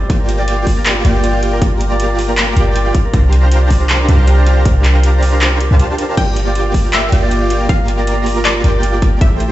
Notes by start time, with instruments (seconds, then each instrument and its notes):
Already playing: harp G4 A4 C5 D5
0.01 harp F4
0.10 808-style bass G1, supersaw synth A#3 F4 G4 D5 G5, harp F4, kick, closed hi-hat
0.20 harp A#4
0.29 harp F4, closed hi-hat
0.39 harp D5
0.48 harp F4, closed hi-hat
0.58 harp F5
0.67 harp F4, kick, open hi-hat
0.77 harp A#4
0.86 harp F4, clap, closed hi-hat
0.96 harp A#4
1.05 808-style bass G1, supersaw synth A#3 F4 G4 D5 G5, harp F4, closed hi-hat
1.15 harp D5
1.24 harp F4, closed hi-hat
1.34 harp F5
1.43 harp F4, closed hi-hat
1.53 harp A#4
1.62 808-style bass G1, supersaw synth A#3 F4 G4 D5 A#5, harp F4, kick, closed hi-hat
1.72 harp A#4
1.81 harp F4, closed hi-hat
1.91 harp D5
2.00 harp F4, closed hi-hat
2.10 harp F5
2.18 harp F4, open hi-hat
2.29 harp A#4
2.38 harp F4, clap, closed hi-hat
2.48 harp A#4
2.57 808-style bass G1, supersaw synth A#3 F4 G4 D5 G5, harp F4, closed hi-hat
2.67 harp D5
2.76 harp F4, closed hi-hat
2.86 harp F5
2.95 harp F4, kick, closed hi-hat
3.05 harp A#4
3.14 808-style bass C2, supersaw synth D4 G4 C5 F5 A#5, harp F4, kick, closed hi-hat
3.24 harp A#4
3.33 harp F4, closed hi-hat
3.43 harp C5
3.52 harp F4, closed hi-hat
3.62 harp D5
3.71 harp F4, kick, open hi-hat
3.81 harp A#4
3.90 harp F4, clap, closed hi-hat
4.00 harp A#4
4.08 808-style bass C2, supersaw synth D4 G4 C5 F5 A#5, harp F4, closed hi-hat
4.19 harp C5
4.27 harp F4, closed hi-hat
4.38 harp D5
4.46 harp F4, closed hi-hat
4.57 harp A#4
4.65 808-style bass C2, supersaw synth D4 G4 C5 F5 A#5, harp F4, kick, closed hi-hat
4.76 harp A#4
4.84 harp F4, clap, closed hi-hat
4.95 harp C5
5.03 harp F4, closed hi-hat
5.14 harp D5
5.22 harp F4, open hi-hat
5.33 harp A#4
5.41 harp F4, clap, closed hi-hat
5.52 harp A#4
5.60 harp G4, closed hi-hat
5.71 808-style bass C2, supersaw synth D4 G4 C5 F5 A5, harp G4
5.79 harp F4, closed hi-hat
5.90 harp C5
5.98 harp A#4, closed hi-hat
6.09 harp A#4
6.17 808-style bass G1, supersaw synth A#3 F4 G4 D5 G5, harp F4, synth pluck G5, kick, closed hi-hat, crash
6.28 harp A#4
6.36 harp F4, closed hi-hat
6.47 harp D5
6.55 harp F4, closed hi-hat
6.66 harp F5
6.74 harp F4, kick, open hi-hat
6.85 harp A#4
6.93 harp F4, synth pluck E5, clap, closed hi-hat
7.04 harp A#4
7.12 808-style bass G1, supersaw synth A#3 F4 G4 D5 G5, harp F4, closed hi-hat
7.23 harp D5
7.31 harp F4, closed hi-hat
7.42 harp F5
7.50 harp F4, closed hi-hat
7.61 harp A#4
7.69 808-style bass G1, supersaw synth A#3 F4 G4 D5 A#5, synth pluck F5, kick, closed hi-hat
7.80 harp A#4
7.88 harp F4, closed hi-hat
7.99 harp D5
8.07 harp F4, closed hi-hat
8.18 harp F5
8.26 harp F4, open hi-hat
8.37 harp A#4
8.45 harp F4, synth pluck D5, clap, closed hi-hat
8.56 harp A#4
8.64 808-style bass G1, supersaw synth A#3 F4 G4 D5 G5, harp F4, closed hi-hat
8.75 harp D5
8.83 harp F4, closed hi-hat
8.94 harp F5
9.02 harp F4, kick, closed hi-hat
9.13 harp A#4
9.21 808-style bass A1, supersaw synth A3 E4 G4 C5 G5, harp E4, synth pluck E5, kick, closed hi-hat
9.32 harp A4
9.40 harp E4, closed hi-hat